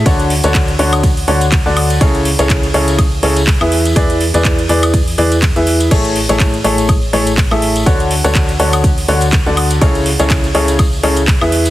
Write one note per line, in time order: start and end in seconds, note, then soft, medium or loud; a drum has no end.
0.06 0.41 D2 loud
0.06 0.32 D3 loud
0.06 0.32 D4 medium
0.06 0.32 F#4 medium
0.06 0.32 A4 medium
0.06 0.32 C#5 loud
0.06 kick loud
0.06 closed hi-hat medium
0.06 ride medium
0.06 tambourine medium
0.20 closed hi-hat soft
0.20 tambourine soft
0.30 open hi-hat loud
0.43 0.77 D2 loud
0.43 0.70 D3 medium
0.43 0.70 D4 medium
0.43 0.70 F#4 medium
0.43 0.70 A4 medium
0.43 0.70 C#5 loud
0.43 closed hi-hat medium
0.43 tambourine medium
0.55 kick loud
0.55 clap loud
0.55 closed hi-hat medium
0.55 ride medium
0.55 tambourine medium
0.68 closed hi-hat soft
0.68 tambourine soft
0.79 1.26 D2 loud
0.79 1.05 D3 loud
0.79 1.05 D4 medium
0.79 1.05 F#4 medium
0.79 1.05 A4 medium
0.79 1.05 C#5 loud
0.79 open hi-hat loud
0.93 closed hi-hat medium
0.93 tambourine medium
0.93 high woodblock medium
1.03 kick loud
1.03 closed hi-hat medium
1.03 ride medium
1.03 tambourine medium
1.17 open hi-hat medium
1.17 tambourine soft
1.28 1.63 D2 loud
1.28 1.45 D3 medium
1.28 1.45 D4 medium
1.28 1.45 F#4 medium
1.28 1.45 A4 medium
1.28 1.45 C#5 loud
1.28 open hi-hat loud
1.41 closed hi-hat medium
1.41 tambourine medium
1.52 kick loud
1.52 clap loud
1.52 closed hi-hat medium
1.52 ride medium
1.66 1.99 D2 loud
1.66 1.98 D3 medium
1.66 1.98 D4 medium
1.66 1.98 F#4 medium
1.66 1.98 A4 medium
1.66 1.98 D5 medium
1.66 tambourine soft
1.77 open hi-hat loud
1.77 high woodblock medium
1.90 closed hi-hat medium
1.90 tambourine medium
2.01 2.27 C#3 loud
2.01 2.27 E4 medium
2.01 2.27 G#4 medium
2.01 2.27 A4 medium
2.01 2.27 C#5 loud
2.01 kick loud
2.01 closed hi-hat medium
2.01 ride medium
2.01 tambourine medium
2.15 closed hi-hat soft
2.15 tambourine soft
2.25 open hi-hat loud
2.39 2.72 C#2 loud
2.39 2.65 C#3 medium
2.39 2.65 E4 medium
2.39 2.65 G#4 medium
2.39 2.65 A4 medium
2.39 2.65 C#5 loud
2.39 closed hi-hat medium
2.39 tambourine medium
2.50 kick loud
2.50 clap loud
2.50 closed hi-hat medium
2.50 ride medium
2.63 closed hi-hat soft
2.63 tambourine soft
2.74 3.21 C#2 medium
2.74 3.00 C#3 loud
2.74 3.00 E4 medium
2.74 3.00 G#4 medium
2.74 3.00 A4 medium
2.74 3.00 C#5 loud
2.74 open hi-hat loud
2.88 closed hi-hat medium
2.88 tambourine medium
2.99 kick loud
2.99 closed hi-hat medium
2.99 ride medium
2.99 high woodblock medium
3.12 tambourine soft
3.23 3.58 C#2 loud
3.23 3.40 C#3 medium
3.23 3.40 E4 medium
3.23 3.40 G#4 medium
3.23 3.40 A4 medium
3.23 3.40 C#5 loud
3.23 open hi-hat loud
3.36 closed hi-hat medium
3.36 tambourine medium
3.47 kick loud
3.47 clap loud
3.47 open hi-hat medium
3.47 ride medium
3.61 3.94 E2 loud
3.61 3.94 E3 medium
3.61 3.94 E4 medium
3.61 3.94 G#4 medium
3.61 3.94 B4 medium
3.61 3.94 E5 medium
3.61 tambourine soft
3.61 high woodblock medium
3.72 open hi-hat loud
3.85 closed hi-hat medium
3.85 tambourine medium
3.96 4.31 E2 loud
3.96 4.22 E3 loud
3.96 4.22 E4 medium
3.96 4.22 G#4 medium
3.96 4.22 B4 medium
3.96 4.22 D5 loud
3.96 kick loud
3.96 closed hi-hat medium
3.96 ride medium
3.96 tambourine medium
4.10 closed hi-hat soft
4.10 tambourine soft
4.21 open hi-hat loud
4.34 4.67 E2 loud
4.34 4.60 E3 medium
4.34 4.60 E4 medium
4.34 4.60 G#4 medium
4.34 4.60 B4 medium
4.34 4.60 D5 medium
4.34 closed hi-hat medium
4.34 tambourine medium
4.45 kick loud
4.45 clap loud
4.45 closed hi-hat medium
4.45 ride medium
4.59 closed hi-hat soft
4.59 tambourine soft
4.69 5.16 E2 loud
4.69 4.95 E3 loud
4.69 4.95 E4 medium
4.69 4.95 G#4 medium
4.69 4.95 B4 medium
4.69 4.95 D5 loud
4.69 open hi-hat loud
4.83 closed hi-hat medium
4.83 tambourine medium
4.83 high woodblock medium
4.94 kick loud
4.94 closed hi-hat medium
4.94 ride medium
4.94 tambourine medium
5.07 open hi-hat medium
5.07 tambourine soft
5.18 5.53 E2 loud
5.18 5.35 E3 medium
5.18 5.35 E4 medium
5.18 5.35 G#4 medium
5.18 5.35 B4 medium
5.18 5.35 D5 loud
5.18 open hi-hat loud
5.32 closed hi-hat medium
5.32 tambourine medium
5.42 kick loud
5.42 clap loud
5.42 closed hi-hat medium
5.42 ride medium
5.42 tambourine medium
5.56 5.89 E2 loud
5.56 5.89 E3 medium
5.56 5.89 E4 medium
5.56 5.89 G#4 medium
5.56 5.89 B4 medium
5.56 5.89 E5 medium
5.56 closed hi-hat soft
5.56 tambourine soft
5.67 open hi-hat loud
5.80 closed hi-hat medium
5.80 tambourine medium
5.91 6.27 A1 loud
5.91 6.17 A3 loud
5.91 6.17 E4 medium
5.91 6.17 G#4 medium
5.91 6.17 A4 medium
5.91 6.17 C#5 loud
5.91 kick loud
5.91 closed hi-hat medium
5.91 crash medium
5.91 ride medium
5.91 tambourine medium
6.04 closed hi-hat soft
6.04 tambourine soft
6.16 open hi-hat loud
6.29 6.62 A1 loud
6.29 6.55 A3 medium
6.29 6.55 E4 medium
6.29 6.55 G#4 medium
6.29 6.55 A4 medium
6.29 6.55 C#5 loud
6.29 closed hi-hat medium
6.29 tambourine medium
6.40 kick loud
6.40 clap loud
6.40 closed hi-hat medium
6.40 ride medium
6.40 tambourine medium
6.54 closed hi-hat soft
6.54 tambourine soft
6.64 7.11 A1 medium
6.64 6.90 A3 loud
6.64 6.90 E4 medium
6.64 6.90 G#4 medium
6.64 6.90 A4 medium
6.64 6.90 C#5 loud
6.64 open hi-hat loud
6.78 closed hi-hat medium
6.78 tambourine medium
6.89 kick loud
6.89 closed hi-hat medium
6.89 ride medium
6.89 tambourine medium
6.89 high woodblock medium
7.02 tambourine soft
7.13 7.49 A1 loud
7.13 7.30 A3 medium
7.13 7.30 E4 medium
7.13 7.30 G#4 medium
7.13 7.30 A4 medium
7.13 7.30 C#5 loud
7.13 open hi-hat loud
7.27 closed hi-hat medium
7.27 tambourine medium
7.38 kick loud
7.38 clap loud
7.38 open hi-hat medium
7.38 ride medium
7.51 7.84 A1 loud
7.51 7.84 A3 medium
7.51 7.84 E4 medium
7.51 7.84 G#4 medium
7.51 7.84 A4 medium
7.51 7.84 E5 medium
7.51 tambourine soft
7.51 high woodblock medium
7.62 open hi-hat loud
7.76 closed hi-hat medium
7.76 tambourine medium
7.86 8.22 D2 loud
7.86 8.12 D3 loud
7.86 8.12 D4 medium
7.86 8.12 F#4 medium
7.86 8.12 A4 medium
7.86 8.12 C#5 loud
7.86 kick loud
7.86 closed hi-hat medium
7.86 ride medium
7.86 tambourine medium
8.00 closed hi-hat soft
8.00 tambourine soft
8.11 open hi-hat loud
8.24 8.57 D2 loud
8.24 8.50 D3 medium
8.24 8.50 D4 medium
8.24 8.50 F#4 medium
8.24 8.50 A4 medium
8.24 8.50 C#5 loud
8.24 closed hi-hat medium
8.24 tambourine medium
8.35 kick loud
8.35 clap loud
8.35 closed hi-hat medium
8.35 ride medium
8.48 closed hi-hat soft
8.48 tambourine soft
8.60 9.06 D2 loud
8.60 8.86 D3 loud
8.60 8.86 D4 medium
8.60 8.86 F#4 medium
8.60 8.86 A4 medium
8.60 8.86 C#5 loud
8.60 open hi-hat loud
8.73 closed hi-hat medium
8.73 tambourine medium
8.73 high woodblock medium
8.84 kick loud
8.84 closed hi-hat medium
8.84 ride medium
8.84 tambourine medium
8.98 open hi-hat medium
8.98 tambourine soft
9.08 9.44 D2 loud
9.08 9.26 D3 loud
9.08 9.26 D4 medium
9.08 9.26 F#4 medium
9.08 9.26 A4 medium
9.08 9.26 C#5 loud
9.08 open hi-hat loud
9.21 closed hi-hat medium
9.21 tambourine medium
9.32 kick loud
9.32 clap loud
9.32 closed hi-hat medium
9.32 ride medium
9.32 tambourine medium
9.46 9.79 D2 loud
9.46 9.79 D3 medium
9.46 9.79 D4 medium
9.46 9.79 F#4 medium
9.46 9.79 A4 medium
9.46 9.79 D5 medium
9.46 tambourine soft
9.57 open hi-hat loud
9.57 high woodblock medium
9.70 closed hi-hat medium
9.70 tambourine medium
9.81 10.17 C#2 loud
9.81 10.08 C#3 loud
9.81 10.08 E4 medium
9.81 10.08 G#4 medium
9.81 10.08 A4 medium
9.81 10.08 C#5 loud
9.81 kick loud
9.81 closed hi-hat medium
9.81 ride medium
9.81 tambourine medium
9.95 closed hi-hat soft
9.95 tambourine soft
10.06 open hi-hat loud
10.19 10.53 C#2 loud
10.19 10.45 C#3 medium
10.19 10.45 E4 medium
10.19 10.45 G#4 medium
10.19 10.45 A4 medium
10.19 10.45 C#5 loud
10.19 closed hi-hat medium
10.19 tambourine medium
10.29 kick loud
10.29 clap loud
10.29 closed hi-hat medium
10.29 ride medium
10.29 tambourine medium
10.44 closed hi-hat soft
10.44 tambourine soft
10.55 11.01 C#2 loud
10.55 10.81 C#3 loud
10.55 10.81 E4 medium
10.55 10.81 G#4 medium
10.55 10.81 A4 medium
10.55 10.81 C#5 loud
10.55 open hi-hat loud
10.68 closed hi-hat medium
10.68 tambourine medium
10.79 kick loud
10.79 closed hi-hat medium
10.79 ride medium
10.79 tambourine medium
10.79 high woodblock medium
10.93 tambourine soft
11.03 11.39 C#2 loud
11.03 11.21 C#3 medium
11.03 11.21 E4 medium
11.03 11.21 G#4 medium
11.03 11.21 A4 medium
11.03 11.21 C#5 loud
11.03 open hi-hat loud
11.16 closed hi-hat medium
11.16 tambourine medium
11.28 kick loud
11.28 clap loud
11.28 open hi-hat medium
11.28 ride medium
11.28 tambourine medium
11.41 11.70 E2 loud
11.41 11.70 E3 medium
11.41 11.70 E4 medium
11.41 11.70 G#4 medium
11.41 11.70 B4 medium
11.41 11.70 E5 medium
11.41 tambourine soft
11.41 high woodblock medium
11.52 open hi-hat loud
11.65 closed hi-hat medium
11.65 tambourine medium